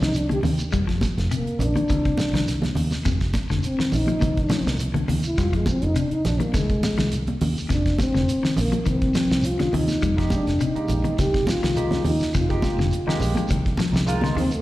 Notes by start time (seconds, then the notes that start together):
0.01 C2 D#4, snare, shekere
0.14 D4, closed hi-hat, shekere
0.29 D3 G4, closed hi-hat, high conga
0.43 D#2 C3, open hi-hat, high conga, low conga, shekere
0.58 muted fingered electric bass stroke, closed hi-hat, shekere
0.72 F1 G3, kick, closed hi-hat, shekere
0.87 F3, kick, snare, closed hi-hat
1.01 kick, snare, closed hi-hat, high conga, shekere
1.18 F1, snare, closed hi-hat, shekere
1.31 C3 A#3, closed hi-hat, shekere
1.46 muted fingered electric bass stroke, closed hi-hat
1.59 A#1 D4, closed hi-hat, low conga, shekere
1.75 D#3, closed hi-hat, high conga, shekere
1.89 C2 D3, kick, closed hi-hat, shekere
2.05 C3, kick, closed hi-hat
2.17 snare, closed hi-hat, high conga, shekere
2.33 C2 D#3, snare, closed hi-hat, shekere
2.47 snare, closed hi-hat, shekere
2.62 snare, closed hi-hat, high conga, low conga
2.75 D#2, open hi-hat, low conga, shekere
2.91 muted fingered electric bass stroke, snare, high conga, shekere
3.05 F1 C3, kick, snare, closed hi-hat, shekere
3.21 kick, snare, closed hi-hat
3.34 kick, snare, closed hi-hat, high conga, shekere
3.49 F1 D3, snare, shekere
3.63 C4, closed hi-hat, shekere
3.79 D#3, muted fingered electric bass stroke, snare
3.92 A#1 D#4, open hi-hat, low conga, shekere
4.07 F3, closed hi-hat, high conga, shekere
4.20 C2 D#3, kick, closed hi-hat, high conga, shekere
4.37 kick, closed hi-hat
4.49 F3, snare, closed hi-hat, high conga, shekere
4.65 C2, snare, shekere
4.78 closed hi-hat, shekere
4.94 D3, closed hi-hat, high conga, low conga
5.08 D#2 C3, open hi-hat, low conga, shekere
5.23 E4, muted fingered electric bass stroke, closed hi-hat, shekere
5.38 F1 G3 F4, kick, snare, closed hi-hat, shekere
5.53 F3 G#3, kick, closed hi-hat
5.66 C4, kick, closed hi-hat, high conga, shekere
5.82 F1 D#4, closed hi-hat, shekere
5.96 C3 D4, closed hi-hat, shekere
6.11 D#4, muted fingered electric bass stroke, closed hi-hat
6.25 A#1 D4, snare, closed hi-hat, low conga, shekere
6.40 D#3 A#3, closed hi-hat, high conga, shekere
6.54 C2 D3 G#3, kick, snare, closed hi-hat, high conga, shekere
6.70 kick, closed hi-hat
6.83 snare, closed hi-hat, high conga, shekere
6.98 C2 D#3, snare, closed hi-hat, shekere
7.12 closed hi-hat, shekere
7.27 closed hi-hat, high conga
7.41 D#2, open hi-hat, high conga, low conga, shekere
7.57 muted fingered electric bass stroke, shekere
7.69 F1 C3 D4, kick, snare, closed hi-hat, shekere
7.86 kick, snare, closed hi-hat
7.99 C4, kick, snare, closed hi-hat, high conga, shekere
8.14 F1 D3, snare, shekere
8.29 closed hi-hat, shekere
8.43 D#3, muted fingered electric bass stroke, snare
8.56 A#1 A#3, open hi-hat, low conga, shekere
8.72 F3, closed hi-hat, high conga, shekere
8.85 C2 D#3 C4, kick, closed hi-hat, shekere
9.02 kick, closed hi-hat
9.14 F3, snare, closed hi-hat, high conga, shekere
9.30 C2, snare, shekere
9.42 F4, closed hi-hat, shekere
9.59 D3, snare, closed hi-hat, high conga, low conga
9.72 D#2 C3 D#4, open hi-hat, high conga, low conga, shekere
9.88 snare, closed hi-hat, high conga, shekere
10.02 F1 G3, kick, closed hi-hat, shekere
10.16 F3 G#3 A#3 D#4 G4, kick, snare, closed hi-hat
10.30 D4, kick, closed hi-hat, high conga, shekere
10.46 F1, snare, closed hi-hat, shekere
10.60 C3 D#4, closed hi-hat, shekere
10.74 G#3 A#3 D#4 G4, muted fingered electric bass stroke, closed hi-hat
10.88 A#1, closed hi-hat, low conga, shekere
11.04 D#3, closed hi-hat, high conga, shekere
11.19 C2 D3 G4, kick, snare, closed hi-hat, shekere
11.34 C3, kick, snare, closed hi-hat
11.47 F4, snare, closed hi-hat, high conga, shekere
11.62 C2 D#3 D#4 G4, snare, closed hi-hat, shekere
11.75 G#3 A#3 D#4 G4, closed hi-hat, shekere
11.91 snare, closed hi-hat, high conga, low conga
12.04 D#2 D#4, open hi-hat, high conga, low conga, shekere
12.20 muted fingered electric bass stroke, snare, shekere
12.34 F1 C3 F4, kick, snare, closed hi-hat, shekere
12.49 G#3 A#3 D#4 G4, kick, closed hi-hat
12.62 kick, snare, closed hi-hat, high conga, shekere
12.78 F1 D3, snare, shekere
12.91 closed hi-hat, shekere
13.07 D#3 G#3 A#3 D#4 G4, muted fingered electric bass stroke, snare
13.20 A#1, open hi-hat, low conga, shekere
13.35 F3, closed hi-hat, high conga, shekere
13.48 C2 D#3, kick, closed hi-hat, high conga, shekere
13.66 kick, closed hi-hat
13.77 F3, snare, closed hi-hat, high conga, shekere
13.92 C2 D#4 G4, snare, shekere
14.06 G#3 A#3 D#4 F4, closed hi-hat, shekere
14.21 D3, snare, closed hi-hat, high conga
14.35 D#2 D#3 C4, open hi-hat, low conga, shekere
14.51 A3, muted fingered electric bass stroke, closed hi-hat, shekere